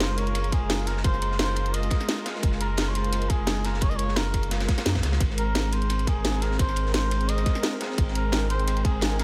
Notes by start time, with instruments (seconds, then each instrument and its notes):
Already playing: sub bass F#1, analog synth pad G#3 F4 A#4, muted trumpet C5
0.00 snare, closed hi-hat, ride
0.18 muted trumpet C#5, closed hi-hat, ride
0.27 closed hi-hat
0.35 snare, closed hi-hat, ride
0.44 closed hi-hat, ride
0.52 muted trumpet G#4, kick, closed hi-hat, ride
0.62 sub bass F#1
0.70 snare, closed hi-hat, ride
0.87 muted trumpet A#4, snare, closed hi-hat, ride
0.97 snare
1.04 sub bass F#1, muted trumpet C5, kick, closed hi-hat, ride
1.14 snare
1.22 closed hi-hat, ride
1.31 snare
1.39 muted trumpet C5, snare, closed hi-hat, ride
1.56 closed hi-hat, ride
1.66 closed hi-hat
1.74 muted trumpet D#5, closed hi-hat, ride
1.83 snare, closed hi-hat
1.90 kick, snare, closed hi-hat, ride
2.00 snare
2.09 snare, closed hi-hat, ride
2.26 snare, closed hi-hat, ride
2.35 snare
2.43 sub bass F#1, kick, closed hi-hat, ride
2.52 snare
2.61 muted trumpet A#4, closed hi-hat, ride
2.77 snare, closed hi-hat, ride
2.89 muted trumpet C#5
2.95 muted trumpet C5, closed hi-hat, ride
3.04 closed hi-hat
3.13 snare, closed hi-hat, ride
3.22 closed hi-hat, ride
3.30 muted trumpet G#4, kick, closed hi-hat, ride
3.39 sub bass F#1
3.47 snare, closed hi-hat, ride
3.65 muted trumpet A#4, snare, closed hi-hat, ride
3.74 snare
3.81 sub bass F#1, muted trumpet C#5, kick, closed hi-hat, ride
3.90 muted trumpet D#5, snare
3.96 muted trumpet C#5, closed hi-hat, ride
4.08 snare
4.16 muted trumpet A#4, snare, closed hi-hat, ride
4.34 kick, closed hi-hat, ride
4.43 closed hi-hat
4.51 snare, closed hi-hat, ride
4.60 snare, closed hi-hat, ride
4.68 kick, snare, closed hi-hat, ride
4.78 snare, closed hi-hat, ride
4.85 sub bass F#2, snare, closed hi-hat, ride
4.95 kick, snare, ride
5.03 sub bass C#2, snare, closed hi-hat, ride
5.12 snare, ride
5.20 sub bass G#1, analog synth pad G#3 C4 A#4, kick, closed hi-hat, ride
5.30 snare
5.38 muted trumpet A#4, closed hi-hat, ride
5.55 snare, closed hi-hat, ride
5.73 muted trumpet C5, closed hi-hat, ride
5.82 closed hi-hat
5.90 snare, closed hi-hat, ride
5.99 closed hi-hat, ride
6.07 muted trumpet G#4, kick, closed hi-hat, ride
6.17 sub bass G#1
6.24 snare, closed hi-hat, ride
6.42 muted trumpet A#4, snare, closed hi-hat, ride
6.51 snare
6.59 sub bass G#1, muted trumpet C5, kick, closed hi-hat, ride
6.69 snare
6.76 closed hi-hat, ride
6.86 snare
6.94 muted trumpet C5, snare, closed hi-hat, ride
7.11 closed hi-hat, ride
7.21 closed hi-hat
7.29 muted trumpet D#5, closed hi-hat, ride
7.38 snare, closed hi-hat
7.46 kick, snare, closed hi-hat, ride
7.55 snare
7.63 snare, closed hi-hat, ride
7.80 snare, closed hi-hat, ride
7.90 snare
7.98 sub bass G#1, kick, closed hi-hat, ride
8.08 snare
8.15 muted trumpet A#4, closed hi-hat, ride
8.32 snare, closed hi-hat, ride
8.50 muted trumpet C5, closed hi-hat, ride
8.59 closed hi-hat
8.68 snare, closed hi-hat, ride
8.76 closed hi-hat, ride
8.85 muted trumpet G#4, kick, closed hi-hat, ride
8.94 sub bass G#1
9.01 snare, closed hi-hat, ride
9.19 muted trumpet A#4, snare, closed hi-hat, ride